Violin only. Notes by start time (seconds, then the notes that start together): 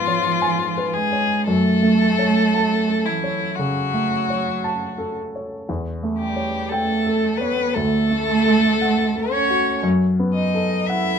Already playing: F4
0.93 G#4
1.46 A4
3.06 E4
3.56 F#4
6.18 G4
6.68 A4
7.38 B4
7.74 A4
9.30 C#5
10.34 D#5
10.87 E5